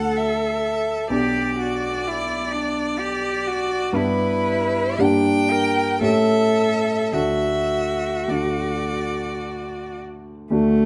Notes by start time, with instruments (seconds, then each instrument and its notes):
Already playing: grand piano D2 A3 D4 F#4, cello A4, violin F#5
0.16 violin E5
1.10 grand piano B1 B3 D4 G4, cello G4, violin D5
1.59 cello F#4
2.08 cello E4
2.53 cello D4
2.99 cello G4
3.47 cello F#4
3.93 grand piano G2 B3 D4 G4, cello E4, violin B4
4.98 grand piano G2 A#3 D4 G4, cello D4, violin G5
5.51 cello A#4
6.01 grand piano A2 A3 C#4 G4, cello A4, violin E5
7.13 grand piano D2 A3 D4 F#4, cello F#4, violin E5
8.28 grand piano D2 A3 D4 F#4, violin D5
10.50 grand piano D2 A3 D4 F#4, cello A3